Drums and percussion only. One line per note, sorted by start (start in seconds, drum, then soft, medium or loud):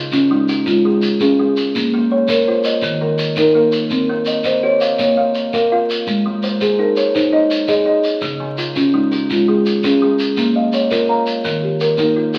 0.12 shekere medium
0.49 shekere medium
0.66 shekere medium
1.02 shekere medium
1.20 shekere medium
1.57 shekere medium
1.75 shekere medium
2.28 shekere medium
2.64 shekere medium
2.82 shekere medium
3.18 shekere medium
3.36 shekere medium
3.72 shekere medium
3.90 shekere medium
4.26 shekere medium
4.44 shekere medium
4.81 shekere medium
4.99 shekere medium
5.35 shekere medium
5.53 shekere medium
5.90 shekere medium
6.07 shekere medium
6.43 shekere medium
6.61 shekere medium
6.96 shekere medium
7.15 shekere medium
7.51 shekere medium
7.68 shekere medium
8.04 shekere medium
8.21 shekere medium
8.58 shekere medium
8.76 shekere medium
9.12 shekere medium
9.30 shekere medium
9.66 shekere medium
9.84 shekere medium
10.19 shekere medium
10.37 shekere medium
10.73 shekere medium
10.91 shekere medium
11.27 shekere medium
11.45 shekere medium
11.80 shekere medium
11.98 shekere medium
12.34 shekere medium